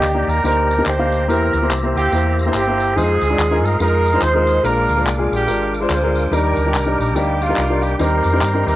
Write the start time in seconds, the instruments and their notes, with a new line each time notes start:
Already playing: upright piano D#3, horn section A#3 D4 G4, tonewheel organ G4 D5 G5 A#5
0.02 fingered electric bass D2, clap, tambourine
0.14 upright piano A#3 D#4 G4 D5
0.27 fingered electric bass D#2, horn section A#4, tambourine
0.44 fingered electric bass D2, upright piano A#3 D#4 G4 C5, horn section D4 G4 A#4, tambourine
0.71 tambourine
0.78 upright piano A#3 D#4 G4 A#4
0.86 fingered electric bass D2, horn section G4 C5, clap, tambourine
0.98 upright piano A#3 D#4 G4 F5
1.12 tambourine
1.28 fingered electric bass E2, upright piano E3 A#3 E4 G4 C5, horn section G4 A#4, tonewheel organ C5 E5 A#5, tambourine
1.53 fingered electric bass D2, tambourine
1.62 upright piano A#3 E4 G4 C5
1.70 fingered electric bass C2, clap, tambourine
1.83 upright piano A#3 E4 G4 C5
1.96 fingered electric bass D2, horn section A#3 C4 G4, tambourine
2.12 fingered electric bass E2, upright piano A#3 E4 G4 C5, tambourine
2.39 tambourine
2.46 upright piano A#3 E4 G4 C5
2.54 fingered electric bass G1, horn section A#3 C4 G4, clap, tambourine
2.67 upright piano A#3 E4 G4 C5
2.80 tambourine
2.96 fingered electric bass F2, upright piano G#3 D#4 F4 C5, horn section C4 D#4 G#4, tonewheel organ G#4 D#5 F5 C6, tambourine
3.21 fingered electric bass D2, tambourine
3.30 upright piano G#3 D#4 F4 D5
3.38 fingered electric bass D#2, clap, tambourine
3.50 upright piano G#3 D#4 F4 A#4
3.63 fingered electric bass G2, horn section A#4, tambourine
3.80 fingered electric bass F2, upright piano G#3 D#4 F4 A#4, horn section D#4 A#4, tambourine
4.06 tambourine
4.13 upright piano G#3 D#4 F4 C5
4.21 fingered electric bass D#2, horn section D#4 G#4 C5, clap, tambourine
4.34 upright piano G#3 D#4 F4 A#4
4.47 tambourine
4.63 fingered electric bass A#1, upright piano A#2 G#3 D4 F4 A#4, horn section D4 F4 A#4, tonewheel organ A#4 D6, tambourine
4.89 fingered electric bass D2, tambourine
4.97 upright piano G#3 D4 F4 A#4
5.06 fingered electric bass C2, clap, tambourine
5.18 upright piano G#3 D4 F4 G#4
5.31 fingered electric bass A#1, horn section D4 G4, tambourine
5.47 fingered electric bass G#1, upright piano G#3 D4 F4 A#4, tambourine
5.75 tambourine
5.80 upright piano G#3 D4 F4 C5
5.90 fingered electric bass D2, horn section F4 G#4 C5, clap, tambourine
6.02 upright piano G#3 D4 F4 A#4
6.15 tambourine
6.31 fingered electric bass D#2, upright piano D#3 G3 D4 D#4 A#4, horn section D4 G4 A#4, tonewheel organ D5 G5, tambourine
6.56 fingered electric bass D2, tambourine
6.65 upright piano G3 D4 D#4 G4
6.73 fingered electric bass C2, clap, tambourine
6.85 upright piano G3 D4 D#4 A#4
6.99 fingered electric bass A#1, horn section A#4, tambourine
7.14 fingered electric bass D2, upright piano G3 D4 D#4 A#4, horn section A#3 D4 G4, tambourine
7.41 horn section A#3 D4 F4, tambourine
7.48 upright piano G3 D4 D#4 A#4
7.56 fingered electric bass C2, clap, tambourine
7.69 upright piano G3 D4 D#4 A#4
7.83 horn section G4, tambourine
7.98 fingered electric bass D#2, upright piano D#3 G3 C4 D#4 A#4, horn section G4 A#4, tonewheel organ A#4 C6, tambourine
8.24 fingered electric bass F2, tambourine
8.33 upright piano G3 C4 D#4 A#4
8.41 fingered electric bass G2, clap, tambourine
8.53 upright piano G3 C4 D#4 A#4
8.66 fingered electric bass D#2, horn section E4 G4 A#4, tambourine